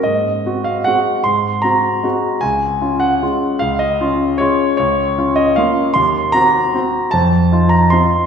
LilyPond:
\new Staff \with { instrumentName = "Grand piano" } { \time 3/4 \key des \major \tempo 4 = 152 << { ees''4. f''8 ges''4 | c'''4 bes''2 | aes''4. ges''4. | f''8 ees''4. des''4 |
\key bes \minor des''4. ees''8 f''4 | c'''4 bes''2 | a''4. bes''8 c'''4 | } \\ { aes,4 <c' ges'>4 <aes c' ges'>4 | aes,4 <c' ges'>4 <aes c' ges'>4 | des,4 <des' f'>4 <aes des' f'>4 | des,4 <des' f'>4 <aes des' f'>4 |
des,4 <des' f'>4 <bes des' f'>4 | ees,4 <c' ges'>4 <c' ges'>4 | f,4 <ees' f'>4 <c' ees' f'>4 | } >> }